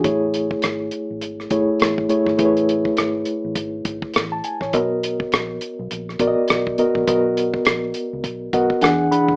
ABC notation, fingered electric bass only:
X:1
M:4/4
L:1/16
Q:"Swing 16ths" 1/4=102
K:B
V:1 name="Fingered electric bass" clef=bass
=A,,,4 G,,,2 z A,,, G,,,2 G,,, z A,,,2 z G,,, | =A,,,4 G,,,2 z A,,, G,,,2 G,,, z A,,,2 z A,,, | B,,,4 A,,,2 z B,,, A,,,2 A,,, z B,,,2 z A,,, | B,,,4 A,,,2 z C,, B,,,2 B,,, z E,,2 z F,,, |]